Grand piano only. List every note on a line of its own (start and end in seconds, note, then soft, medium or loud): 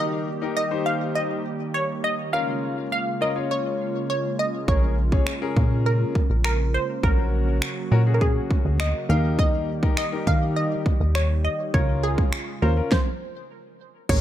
0.00 0.27 D#4 medium
0.00 0.27 G4 medium
0.00 0.27 A#4 medium
0.41 0.59 D#4 medium
0.41 0.59 G4 medium
0.41 0.59 A#4 medium
0.71 1.41 D#4 medium
0.71 1.42 G4 medium
0.71 1.42 C5 medium
2.33 2.86 C#4 medium
2.33 2.86 F4 medium
2.33 2.86 A#4 medium
3.21 3.30 C#4 medium
3.21 3.30 F4 medium
3.21 3.30 A#4 medium
3.35 4.06 C#4 medium
3.35 4.06 F4 medium
3.35 4.06 C#5 medium
4.68 4.94 C#4 medium
4.68 4.95 G#4 medium
4.68 4.95 A#4 medium
5.12 5.30 C#4 medium
5.12 5.30 G#4 medium
5.12 5.30 C#5 medium
5.42 6.12 C#4 medium
5.42 6.12 G#4 medium
5.42 6.12 A#4 medium
7.03 7.56 C#4 medium
7.03 7.56 F#4 medium
7.03 7.56 A#4 medium
7.91 8.00 C#4 medium
7.91 8.00 F#4 medium
7.91 8.01 A#4 medium
8.06 8.77 C#4 medium
8.06 8.77 F#4 medium
8.06 8.77 G#4 medium
9.09 9.68 D#4 medium
9.09 9.68 G4 medium
9.09 9.68 A#4 medium
9.83 10.00 D#4 medium
9.83 10.01 G4 medium
9.83 10.01 A#4 medium
10.12 10.83 D#4 medium
10.12 10.83 G4 medium
10.12 10.83 A#4 medium
11.74 12.27 C#4 medium
11.74 12.27 F4 medium
11.74 12.27 A#4 medium
12.62 12.71 C#4 medium
12.62 12.71 F4 medium
12.62 12.71 C5 medium
12.77 12.92 C#4 medium
12.77 12.92 F4 medium
12.77 12.92 A#4 medium
14.09 14.21 C#4 medium
14.09 14.21 G#4 medium
14.09 14.21 A#4 medium